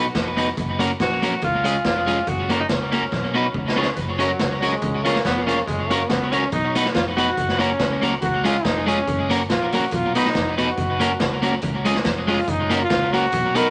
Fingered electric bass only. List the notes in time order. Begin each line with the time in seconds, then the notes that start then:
0.15 F1
0.58 F#1
1.00 A#1
1.43 C#2
1.85 F1
2.27 F#1
2.70 C#2
3.12 B1
3.54 C#2
3.97 F#1
4.40 C#2
4.83 C#2
5.25 F1
5.68 F#1
6.10 C#2
6.52 B1
6.95 F1
7.37 F#1
7.79 C#2
8.23 C#2
8.65 F1
9.08 F#1
9.50 A#1
9.92 B1
10.35 F1
10.78 F#1
11.20 C#2
11.63 C#2
12.05 F1
12.48 F#1
12.91 C#2
13.33 B1